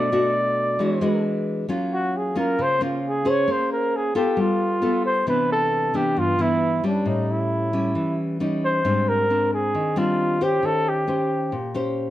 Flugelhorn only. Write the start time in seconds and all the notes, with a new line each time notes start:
Already playing: D5
1.93 F#4
2.17 G#4
2.38 A#4
2.62 C5
2.84 F4
3.07 G#4
3.29 C#5
3.51 C5
3.72 A#4
3.96 G#4
4.16 G4
4.41 F4
5.06 C5
5.28 B4
5.52 A4
5.96 G4
6.19 F4
6.41 E4
6.86 D4
7.08 D#4
7.31 E4
8.64 C5
9.09 A#4
9.53 G#4
9.98 F4
10.43 G4
10.65 A4
10.89 G4